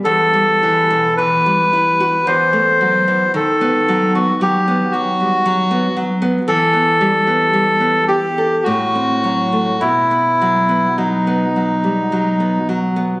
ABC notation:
X:1
M:3/4
L:1/16
Q:1/4=55
K:Em
V:1 name="Bandoneon"
A4 B4 c4 | A3 F G2 F4 z2 | A6 G2 F4 | E4 ^D6 z2 |]
V:2 name="Nylon-string guitar" clef=bass
E,, G, E, B,, E, G, E F E,, A, F, E, | ^D, B, F, B, F, B, F, G, F, B, F, B, | E, B, G, B, G, B, G A A,, C F, A, | B,, B, F, B, F, B, F, G, F, B, F, B, |]